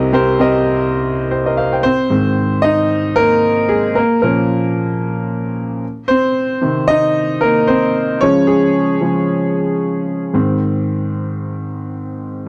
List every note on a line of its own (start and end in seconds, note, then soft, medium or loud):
0.00 1.80 C2 medium
0.00 1.80 C3 medium
0.00 0.13 C4 medium
0.00 0.13 G4 medium
0.00 0.14 A#4 medium
0.00 0.41 D#5 medium
0.13 0.37 C4 medium
0.13 0.37 G4 medium
0.13 0.37 A#4 medium
0.13 0.37 C5 medium
0.39 0.99 C4 medium
0.39 0.99 G4 medium
0.39 0.99 A#4 medium
0.39 1.00 D#5 medium
1.31 1.45 G4 soft
1.31 1.45 C5 soft
1.46 1.57 A#4 soft
1.46 1.57 D#5 soft
1.57 1.71 C5 soft
1.57 1.71 F5 medium
1.72 1.82 C5 soft
1.72 1.98 G5 soft
1.83 2.10 C4 medium
1.83 2.66 C5 medium
2.10 2.86 G#2 medium
2.10 2.86 D#3 soft
2.10 2.87 C4 medium
2.62 3.13 D#4 medium
2.62 3.18 D#5 medium
3.16 3.67 A#3 medium
3.16 3.71 A#4 loud
3.69 3.95 G#3 soft
3.69 3.97 G#4 medium
3.95 4.22 A#3 medium
3.95 4.20 A#4 medium
4.22 4.59 A#2 medium
4.22 4.60 F3 soft
4.22 5.79 A#3 medium
4.22 4.60 C#4 medium
4.22 5.78 A#4 medium
6.08 6.61 C4 medium
6.08 6.91 C5 medium
6.62 8.17 C3 soft
6.62 8.18 D#3 soft
6.62 7.68 C4 medium
6.88 7.39 D#4 medium
6.88 7.43 D#5 loud
7.41 7.67 A#3 medium
7.41 7.66 A#4 medium
7.67 8.18 C4 medium
7.67 8.23 C5 medium
8.21 8.58 C#3 medium
8.21 8.58 F3 soft
8.21 8.47 G#3 medium
8.21 8.47 C#4 medium
8.21 8.49 C#5 medium
8.47 9.00 G#3 medium
8.47 9.23 G#4 medium
9.01 9.25 C#3 soft
9.01 9.25 F3 soft
9.01 9.25 G#3 soft
10.34 11.10 G#2 medium
10.34 11.10 D#3 soft
10.34 11.10 C4 medium